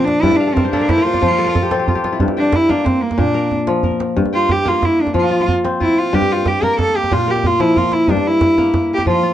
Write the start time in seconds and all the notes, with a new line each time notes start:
Already playing: A#2 F3 A#3 A#4
0.04 D4, djembe slap
0.16 djembe slap
0.22 G2 E4 D5, djembe bass
0.31 E5, djembe slap, djembe tone
0.36 D4 F5
0.47 A4, djembe slap
0.54 C4 A#4, djembe slap, djembe bass
0.65 C5
0.71 A#3 D4 A4, djembe slap, djembe tone
0.81 A#4
0.89 E4 C5, djembe slap, djembe bass
0.98 A#4
1.04 F4 C5, djembe slap
1.13 D5, djembe slap, djembe tone
1.22 F3 C5, djembe bass
1.30 A#4, djembe slap
1.38 A4, djembe slap
1.46 A#4, djembe slap
1.55 A4, djembe tone, djembe bass
1.63 G4, djembe slap
1.71 C4 A4, djembe slap
1.79 G4
1.88 F4, djembe bass
1.95 G4, djembe tone
2.04 F4, djembe slap
2.12 E4, djembe slap
2.20 G2, djembe bass
2.28 djembe slap, djembe tone
2.37 D4 G5, djembe slap
2.45 djembe slap
2.53 E4, djembe slap, djembe bass
2.69 A#3 D4, djembe tone
2.78 djembe slap
2.85 C4, djembe slap, djembe bass
3.02 A#3
3.11 djembe slap, djembe tone
3.18 A#2 D4, djembe bass
3.27 djembe slap
3.34 A#4
3.51 djembe tone
3.67 F3, djembe slap
3.83 A#4, djembe bass
3.91 djembe tone
4.00 djembe slap
4.08 djembe slap
4.16 G2, djembe bass
4.25 djembe slap, djembe tone
4.33 F4 G5, djembe slap
4.49 G4, djembe slap, djembe bass
4.65 A#3 F4, djembe tone
4.74 djembe slap
4.82 E4, djembe slap, djembe bass
5.01 D4
5.07 djembe slap, djembe tone
5.14 F3 F4, djembe bass
5.24 djembe slap
5.31 F4
5.40 djembe slap
5.48 djembe tone, djembe bass
5.64 C4, djembe slap
5.80 E4 F4, djembe bass
5.88 djembe tone
5.99 F4
6.06 djembe slap
6.13 G2 G4, djembe bass
6.22 djembe slap, djembe tone
6.30 F4 G5
6.38 djembe slap
6.46 G4, djembe slap, djembe bass
6.54 djembe slap
6.62 A#3 A#4, djembe tone
6.71 djembe slap
6.79 A4, djembe slap, djembe bass
6.96 G4
7.04 djembe slap, djembe tone
7.12 A#2 F4, djembe bass
7.28 G4 A#4
7.36 djembe slap
7.44 F4, djembe tone, djembe bass
7.60 F3 E4, djembe slap
7.76 F4 A#4, djembe bass
7.84 djembe tone
7.92 E4, djembe slap
8.00 djembe slap
8.08 G2 D4, djembe bass
8.17 djembe slap, djembe tone
8.27 E4
8.41 djembe slap, djembe bass
8.58 A#3, djembe tone
8.66 djembe slap
8.74 djembe slap, djembe bass
8.94 G4
8.98 djembe slap, djembe tone
9.06 F3 F4, djembe slap, djembe bass
9.15 djembe slap
9.23 F4